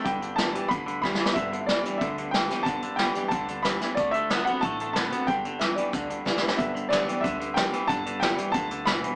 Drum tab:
HH |x--x--x--x--x--x--------|x--x--x--x--x--x--x--x--|x--x--x--x--x--x--x--x--|x--x--x--x--x--x--x--x--|
SD |------o-----------o-o-o-|------o-----------o--o--|------o-----------o--o--|------o-----------o-----|
BD |o-----------o-----o-----|o-----------o-----------|o-----------o-----------|o-----------o-----------|

HH |x--x--x--x--x--x--------|x--x--x--x--x--x--x--x--|x--x--x--x--x--x--x--x--|
SD |------o-----------o-o-o-|------o-----------o-----|------o-----------o-----|
BD |o-----------o-----o-----|o-----------o-----------|o-----------o-----------|